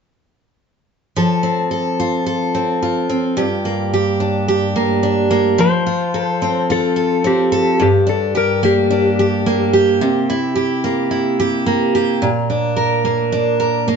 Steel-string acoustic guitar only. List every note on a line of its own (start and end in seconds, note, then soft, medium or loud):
1.16 3.40 F3 soft
1.16 1.70 A4 soft
1.43 2.53 C4 soft
1.71 2.25 A4 soft
2.00 2.82 F4 soft
2.26 3.37 A4 medium
2.55 3.08 C4 soft
2.83 3.97 F4 soft
3.10 3.44 C4 soft
3.37 5.58 G2 medium
3.37 3.92 G4 soft
3.65 4.75 A#3 soft
3.94 4.47 G4 medium
4.20 5.02 D4 soft
4.48 5.65 G4 medium
4.76 5.29 A#3 soft
5.03 5.65 D4 medium
5.31 5.65 A#3 soft
5.58 7.83 F3 medium
5.87 6.70 F4 soft
6.14 6.95 A4 medium
6.42 7.23 C4 medium
6.70 8.06 F4 medium
6.96 7.51 A4 soft
7.24 7.86 C4 medium
7.52 7.86 A4 medium
7.80 10.00 G2 medium
8.07 8.89 D4 soft
8.35 9.19 G4 medium
8.63 9.46 A#3 soft
8.91 10.07 D4 soft
9.19 9.73 G4 medium
9.46 10.33 A#3 soft
9.73 10.55 G4 medium
10.01 12.22 C3 medium
10.30 11.10 E4 soft
10.56 11.38 G4 medium
10.84 11.66 A#3 soft
11.11 12.28 E4 medium
11.40 11.94 G4 medium
11.66 13.04 A#3 soft
11.95 12.29 G4 medium
12.22 13.96 A#2 medium
12.50 13.31 D4 soft
12.77 13.59 A#4 medium
13.05 13.87 A#3 soft
13.32 13.96 D4 medium
13.60 13.96 A#4 medium
13.88 13.96 A#3 soft